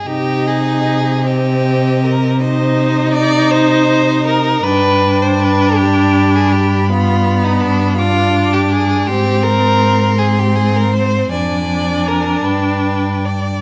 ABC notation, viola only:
X:1
M:12/8
L:1/8
Q:3/8=53
K:Cm
V:1 name="Viola"
E3 C3 E6 | D6 =B,3 D3 | C3 C3 D6 |]